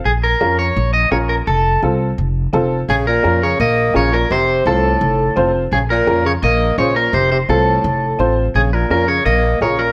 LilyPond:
<<
  \new Staff \with { instrumentName = "Clean electric guitar" } { \time 4/4 \key bes \minor \tempo 4 = 170 aes'8 bes'4 des''4 ees''8 des''8 bes'8 | a'4 r2. | aes'8 bes'4 des''8 ees''4 des''8 bes'8 | c''4 a'2~ a'8 r8 |
aes'8 bes'4 des''8 ees''4 des''8 bes'8 | c''8 c''8 a'2~ a'8 r8 | aes'8 bes'8 bes'8 des''8 ees''4 des''8 bes'8 | }
  \new Staff \with { instrumentName = "Upright piano" } { \time 4/4 \key bes \minor r4 <des' f' bes'>8 r4. <des' f' bes'>8 r8 | r4 <c' f' a'>8 r4. <c' f' a'>8 r8 | r4 <des' f' bes'>8 r4. <des' f' bes'>8 r8 | r4 <c' f' a'>8 r4. <c' f' c''>8 r8 |
r4 <des' f' bes'>8 r4. <des' f' c''>8 r8 | r4 <c' f' a'>8 r4. <c' f' c''>8 r8 | r4 <des' f' bes'>8 r4. <des' f' bes'>8 r8 | }
  \new Staff \with { instrumentName = "Tenor saxophone" } { \clef bass \time 4/4 \key bes \minor r1 | r1 | des8 bes,4 des8 bes4 des8 bes,8 | c4 a,2~ a,8 r8 |
des8 bes,4 des8 bes4 des8 bes,8 | c8 c8 a,2~ a,8 r8 | des8 bes,8 bes,8 des8 bes4 des8 bes,8 | }
  \new Staff \with { instrumentName = "Upright bass" } { \clef bass \time 4/4 \key bes \minor bes,,4 f,4 bes,,4 bes,,4 | f,,4 c,4 f,,4 f,,4 | bes,,4 f,4 bes,,4 bes,,4 | f,,4 c,4 f,,4 f,,4 |
bes,,4 f,4 bes,,4 bes,,4 | f,,4 c,4 f,,4 a,,4 | bes,,4 f,4 bes,,4 bes,,4 | }
>>